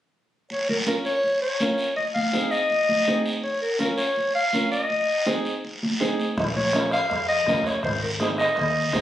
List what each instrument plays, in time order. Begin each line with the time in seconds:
0.50 clarinet C#5, high conga, long guiro
0.69 clarinet A#4, high conga
0.87 upright piano C#4 F4 A#4, clarinet A#4, high conga, short guiro
1.05 clarinet C#5, short guiro
1.23 high conga, long guiro
1.42 clarinet C#5
1.60 upright piano C#4 F4 A#4, high conga, short guiro
1.78 short guiro
1.96 clarinet D#5, high conga, long guiro
2.14 clarinet F5, high conga
2.33 upright piano C4 D#4 G#4, high conga, short guiro
2.51 clarinet D#5, short guiro
2.70 high conga, long guiro
2.89 high conga
3.06 upright piano C4 D#4 G#4, high conga, short guiro
3.26 short guiro
3.43 clarinet C#5, high conga, long guiro
3.62 clarinet A#4
3.79 upright piano C#4 F4 A#4, clarinet A#4, high conga, short guiro
3.97 clarinet C#5, short guiro
4.16 high conga, long guiro
4.35 clarinet F5
4.53 upright piano C#4 F4 A#4, high conga, short guiro
4.72 clarinet D#5, short guiro
4.90 high conga, long guiro
5.26 upright piano C4 D#4 G#4, high conga, short guiro
5.45 short guiro
5.64 high conga, long guiro
5.83 high conga
6.00 upright piano C4 D#4 G#4, high conga, short guiro
6.20 short guiro
6.37 upright bass A#1, bombo low, bombo rim, high conga, long guiro
6.56 clarinet C#5, high conga
6.73 upright piano C#4 F4 A#4, bombo rim, high conga, short guiro
6.91 clarinet F5, bombo rim, short guiro
7.10 upright bass F2, bombo rim, high conga, long guiro
7.29 clarinet D#5
7.46 upright bass F2, upright piano C#4 F4 A#4, bombo low, bombo rim, high conga, short guiro
7.64 clarinet C#5, bombo rim, short guiro
7.83 upright bass G#1, clarinet C5, bombo low, bombo rim, high conga, long guiro
8.02 clarinet A#4
8.20 upright piano C4 D#4 G#4, clarinet G#4, bombo rim, high conga, short guiro
8.38 clarinet D#5, bombo rim, short guiro
8.56 upright bass D#2, bombo rim, high conga, long guiro
8.93 upright bass D#2, upright piano C4 D#4 G#4, bombo low, bombo rim, high conga, short guiro